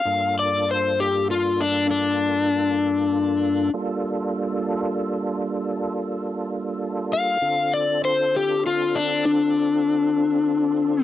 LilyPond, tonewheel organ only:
\new Staff \with { instrumentName = "Tonewheel organ" } { \time 12/8 \key g \dorian \tempo 4. = 65 <g, bes d' f' a'>1. | <g bes d' f' a'>1. | <d c' d' f' a'>1. | }